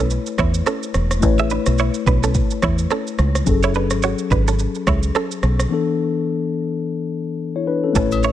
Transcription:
0.00 0.17 B1 medium
0.00 1.17 A3 medium
0.00 0.08 C#4 medium
0.00 1.18 E4 medium
0.00 1.19 B4 medium
0.00 1.20 C#5 medium
0.10 shaker medium
0.26 shaker soft
0.38 0.60 E2 medium
0.38 0.51 E4 medium
0.38 0.50 C#5 medium
0.38 kick medium
0.38 cross-stick medium
0.38 shaker medium
0.54 shaker medium
0.66 0.86 C#4 medium
0.66 0.86 A4 medium
0.66 cross-stick medium
0.66 shaker medium
0.83 shaker medium
0.94 1.23 E1 medium
0.94 cross-stick medium
0.94 shaker soft
1.11 cross-stick medium
1.11 shaker medium
1.20 1.57 A1 loud
1.20 3.42 A3 medium
1.20 3.42 E4 medium
1.20 3.43 B4 medium
1.20 kick loud
1.20 shaker medium
1.25 3.44 C#5 medium
1.38 1.48 G#4 medium
1.38 1.47 E5 medium
1.38 shaker medium
1.50 1.63 D4 medium
1.50 1.62 B4 medium
1.50 shaker medium
1.66 1.89 B1 medium
1.66 cross-stick medium
1.66 shaker loud
1.78 1.91 E4 medium
1.78 1.90 C#5 medium
1.78 shaker medium
1.94 shaker medium
2.06 2.41 B1 medium
2.06 2.19 D4 medium
2.06 2.18 B4 medium
2.06 kick medium
2.06 shaker medium
2.23 2.32 C#4 medium
2.23 2.31 A4 medium
2.23 shaker medium
2.34 kick medium
2.34 shaker medium
2.51 shaker soft
2.62 2.85 E2 medium
2.62 2.75 E4 medium
2.62 2.74 C#5 medium
2.62 kick medium
2.62 cross-stick loud
2.62 shaker medium
2.78 shaker medium
2.90 3.11 C#4 medium
2.90 3.10 A4 medium
2.90 cross-stick medium
2.90 shaker medium
3.07 shaker medium
3.19 3.41 C#2 medium
3.19 cross-stick medium
3.19 shaker soft
3.35 cross-stick medium
3.35 shaker medium
3.44 3.91 F#1 medium
3.44 5.66 F#3 medium
3.44 5.67 C#4 medium
3.44 5.68 G#4 medium
3.44 kick loud
3.44 shaker medium
3.49 5.68 A4 medium
3.63 3.72 E4 medium
3.63 3.72 C#5 medium
3.63 shaker medium
3.74 3.87 D4 medium
3.74 3.86 B4 medium
3.74 shaker medium
3.90 4.13 G#1 medium
3.90 cross-stick medium
3.90 shaker medium
4.02 4.15 F#4 medium
4.02 4.14 C#5 medium
4.02 shaker medium
4.18 shaker soft
4.31 4.65 G#1 medium
4.31 4.43 D4 medium
4.31 4.42 B4 medium
4.31 kick medium
4.31 shaker medium
4.48 4.56 C#4 medium
4.48 4.56 A4 medium
4.48 shaker medium
4.59 shaker medium
4.75 shaker soft
4.87 5.09 C#2 medium
4.87 4.99 E4 medium
4.87 4.99 C#5 medium
4.87 kick medium
4.87 cross-stick loud
4.87 shaker medium
5.03 shaker medium
5.15 5.35 C#4 medium
5.15 5.35 A4 medium
5.15 cross-stick medium
5.15 shaker medium
5.31 shaker medium
5.43 5.65 B1 medium
5.43 cross-stick medium
5.43 shaker medium
5.59 cross-stick medium
5.59 shaker medium
5.69 7.90 E3 medium
5.69 7.91 B3 medium
5.69 7.36 D4 medium
5.74 7.37 A4 medium
7.56 7.67 E4 medium
7.56 7.67 C#5 medium
7.67 7.83 D4 medium
7.67 7.83 B4 medium
7.84 8.11 C#4 medium
7.84 8.10 A4 medium
7.93 8.30 A1 loud
7.93 8.32 A3 medium
7.93 8.07 C#4 medium
7.93 8.32 E4 medium
7.93 8.07 A4 medium
7.93 8.32 B4 medium
7.93 kick loud
7.93 shaker medium
7.98 8.32 C#5 medium
8.11 high agogo medium
8.11 shaker soft
8.23 8.32 E4 medium
8.23 8.32 C#5 medium
8.23 shaker medium

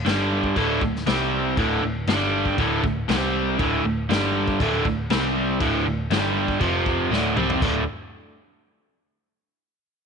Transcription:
0.05 0.53 G1 loud
0.05 0.55 G2 medium
0.05 0.56 D3 medium
0.05 0.56 G3 loud
0.05 snare loud
0.05 crash medium
0.44 kick medium
0.56 0.80 D1 loud
0.56 0.81 D2 medium
0.56 0.81 A2 loud
0.56 0.82 D3 loud
0.56 kick medium
0.56 crash medium
0.81 1.05 D1 medium
0.81 1.02 D2 medium
0.81 1.03 A2 medium
0.81 kick medium
0.96 snare soft
1.06 1.54 C2 medium
1.06 1.57 C3 medium
1.06 1.57 G3 loud
1.06 1.57 C4 medium
1.06 snare loud
1.06 crash medium
1.57 1.81 D1 loud
1.57 1.82 D2 medium
1.57 1.82 A2 medium
1.57 1.83 D3 medium
1.57 kick loud
1.57 crash medium
1.83 2.06 D1 medium
1.83 2.03 D2 medium
1.83 2.03 A2 medium
2.07 2.54 G1 medium
2.07 2.57 G2 medium
2.07 2.58 D3 medium
2.07 2.58 G3 loud
2.07 snare loud
2.07 crash medium
2.45 kick medium
2.58 2.82 D1 medium
2.58 2.82 D2 loud
2.58 2.82 A2 medium
2.58 2.84 D3 loud
2.58 kick medium
2.58 crash medium
2.83 3.07 D1 medium
2.83 3.04 D2 medium
2.83 3.04 A2 medium
2.83 kick medium
3.08 3.56 C2 loud
3.08 3.58 C3 medium
3.08 3.59 G3 medium
3.08 3.59 C4 loud
3.08 snare loud
3.08 crash medium
3.58 3.83 D1 loud
3.58 3.83 D2 medium
3.58 3.84 A2 medium
3.58 3.84 D3 medium
3.58 kick loud
3.58 crash medium
3.84 4.08 D1 medium
3.84 4.05 D2 medium
3.84 4.05 A2 medium
4.10 4.57 G1 loud
4.10 4.59 G2 loud
4.10 4.60 D3 medium
4.10 4.60 G3 loud
4.10 snare loud
4.10 crash medium
4.48 kick medium
4.60 4.84 D1 loud
4.60 4.85 D2 medium
4.60 4.85 A2 medium
4.60 4.86 D3 loud
4.60 kick medium
4.60 crash medium
4.85 5.09 D1 medium
4.85 5.06 D2 medium
4.85 5.06 A2 medium
4.85 kick medium
5.10 5.57 C2 loud
5.10 5.60 C3 loud
5.10 5.60 G3 medium
5.10 5.61 C4 loud
5.10 snare loud
5.10 crash medium
5.60 5.84 D1 medium
5.60 5.85 D2 medium
5.60 5.85 A2 medium
5.60 5.85 D3 medium
5.60 kick loud
5.60 crash medium
5.86 6.09 D1 medium
5.86 6.06 D2 medium
5.86 6.06 A2 medium
6.10 6.58 G1 loud
6.10 6.60 G2 medium
6.10 6.60 D3 medium
6.10 6.61 G3 loud
6.10 snare loud
6.10 crash medium
6.48 kick medium
6.60 7.08 F1 loud
6.60 7.10 F2 medium
6.60 7.11 C3 loud
6.60 7.11 F3 loud
6.60 kick loud
6.60 crash medium
6.86 kick medium
7.11 7.35 D1 medium
7.11 7.36 D2 medium
7.11 7.36 A2 medium
7.11 7.37 D3 loud
7.11 snare medium
7.36 7.60 C2 loud
7.36 7.61 C3 medium
7.36 7.61 G3 loud
7.36 7.62 C4 medium
7.36 mid tom medium
7.50 floor tom medium
7.62 7.86 D1 medium
7.62 7.82 D2 medium
7.62 7.83 A2 medium
7.62 7.83 D3 loud
7.62 kick loud
7.62 crash medium

